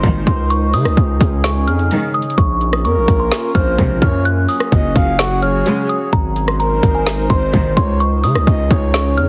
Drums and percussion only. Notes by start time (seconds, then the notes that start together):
0.03 kick, closed hi-hat
0.27 kick, closed hi-hat
0.50 closed hi-hat
0.73 open hi-hat
0.85 cross-stick
0.97 kick, closed hi-hat
1.21 kick, closed hi-hat
1.44 snare, closed hi-hat
1.67 closed hi-hat
1.79 closed hi-hat
1.91 closed hi-hat
2.14 closed hi-hat
2.22 closed hi-hat
2.30 closed hi-hat
2.38 kick, closed hi-hat
2.61 closed hi-hat
2.73 cross-stick
2.85 closed hi-hat
3.08 kick, closed hi-hat
3.31 snare, closed hi-hat
3.55 kick, closed hi-hat
3.78 kick, closed hi-hat
4.02 kick, closed hi-hat
4.25 closed hi-hat
4.49 open hi-hat
4.60 cross-stick
4.72 kick, closed hi-hat
4.96 kick, closed hi-hat
5.19 snare, closed hi-hat
5.42 closed hi-hat
5.66 closed hi-hat
5.89 closed hi-hat
6.13 kick, closed hi-hat
6.36 closed hi-hat
6.48 cross-stick
6.60 closed hi-hat
6.83 kick, closed hi-hat
7.06 snare, closed hi-hat
7.30 kick, closed hi-hat
7.53 kick, closed hi-hat
7.77 kick, closed hi-hat
8.00 closed hi-hat
8.24 open hi-hat
8.35 cross-stick
8.47 kick, closed hi-hat
8.71 kick, closed hi-hat
8.94 snare, closed hi-hat
9.17 closed hi-hat